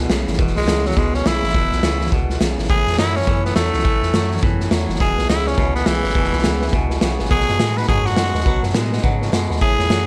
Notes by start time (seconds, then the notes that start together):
Already playing: B2
0.09 B1 E2 C#3 E3 G#3 B3 E4, snare, hi-hat pedal
0.27 G#1 B3 E4, snare
0.33 snare
0.38 E1 E2 B2, kick, snare
0.47 snare
0.56 B1 G#3, snare
0.62 snare
0.68 C#2 E2 C#3 E3 G#3 B3 E4, snare, hi-hat pedal
0.85 F#3 B3 E4, snare
0.91 snare
0.97 C#2 E2 B2 G#3, kick, snare
1.14 C#4, snare
1.25 B1 E2 C#3 E3 G#3 B3 E4, snare, hi-hat pedal
1.43 G#1 B3 E4, snare
1.49 snare
1.54 E1 E2 B2, kick, snare
1.72 B1, snare
1.83 C#2 E2 C#3 E3 G#3 B3 E4, snare, hi-hat pedal
2.01 B3 E4, snare
2.06 snare
2.12 C#2 E2 B2, kick, snare
2.30 snare
2.40 B1 E2 C#3 E3 G#3 B3 E4, snare, hi-hat pedal
2.58 G#1 B3 E4, snare
2.64 snare
2.69 A1 A2 E3 G#4, kick, snare
2.87 E2, snare
2.92 snare
2.98 F#2 A2 E3 F#3 A3 C#4 E4, snare, hi-hat pedal
3.15 C#4 E4, snare
3.22 snare
3.27 E2 F#2 A2 E3, kick, snare
3.45 B3, snare
3.56 E2 A2 E3 F#3 A3 C#4 E4, snare, hi-hat pedal
3.73 C#2 C#4 E4, snare
3.79 snare
3.85 A1 A2 E3, kick, snare
4.03 E2, snare
4.13 F#2 A2 E3 F#3 A3 C#4 E4, snare, hi-hat pedal
4.31 C#4 E4, snare
4.37 snare
4.42 E2 F#2 A2 E3, kick, snare
4.60 snare
4.71 E2 A2 E3 F#3 A3 C#4 E4, snare, hi-hat pedal
4.89 F#1 C#4 E4, snare
4.95 snare
5.00 E1 E2 B2 G#4 B4 E5 G#5, kick, snare
5.18 B1 B4 E5, snare
5.29 C#2 E2 C#3 E3 G#3 B3 E4 B4 E5 G#5, snare, hi-hat pedal
5.46 B3 C#4 E4 B4 E5 G#5, snare
5.53 snare
5.57 C#2 E2 B2 B4 E5 G#5, kick, snare
5.75 B3 B4 E5 G#5, snare
5.86 B1 E2 C#3 E3 G#3 B3 E4 B4 E5 G#5, snare, hi-hat pedal
6.03 G#1 B3 E4 B4 E5, snare
6.10 snare
6.15 E1 E2 B2 B4 E5 G#5, kick, snare
6.24 snare
6.32 B1 B4 E5 G#5, snare
6.38 snare
6.44 C#2 E2 C#3 E3 G#3 B3 E4 B4 E5 G#5, snare, hi-hat pedal
6.61 B3 E4 B4 E5 G#5, snare
6.68 snare
6.72 C#2 E2 B2 B4 E5 G#5, kick, snare
6.89 B4 E5 G#5, snare
7.01 B1 E2 C#3 E3 G#3 B3 E4 B4 E5 G#5, snare, hi-hat pedal
7.19 G#1 B4 E5 G#5, snare
7.25 snare
7.30 B1 B2 F#3 G#4 B4 D#5 F#5, kick, snare
7.40 snare
7.48 F#2 B4 D#5 F#5, snare
7.59 A2 B2 F#3 G#3 B3 D#4 F#4 B4 D#5 F#5, snare, hi-hat pedal
7.77 D#4 F#4 B4 D#5 F#5, snare
7.83 snare
7.88 F#2 G#2 B2 F#3 G#4 B4 D#5 F#5, kick, snare
8.06 F#4 B4 D#5 F#5, snare
8.17 F#2 B2 F#3 G#3 B3 D#4 F#4 B4 D#5 F#5, snare, hi-hat pedal
8.35 D#2 D#4 F#4 B4 D#5 F#5, snare
8.40 snare
8.45 B1 B2 F#3 B4 D#5 F#5, kick, snare
8.63 F#2 B4 D#5 F#5, snare
8.69 snare
8.74 A2 B2 F#3 G#3 B3 D#4 F#4 B4 D#5 F#5, snare, hi-hat pedal
8.92 D#4 F#4 B4 D#5 F#5, snare
8.98 snare
9.03 G#2 B2 C#3 F#3 B4 D#5 F#5, kick, snare
9.21 B4 D#5 F#5, snare
9.31 F#2 B2 G#3 B4 D#5 F#5, snare, hi-hat pedal
9.49 D#2 B4 D#5 F#5, snare
9.56 snare
9.60 A1 A2 E3 G#4 C#5 E5 A5, kick, snare
9.78 E2 C#5 E5 A5, snare
9.89 F#2 A2 E3 F#3 A3 C#4 E4 C#5 E5 A5, snare, hi-hat pedal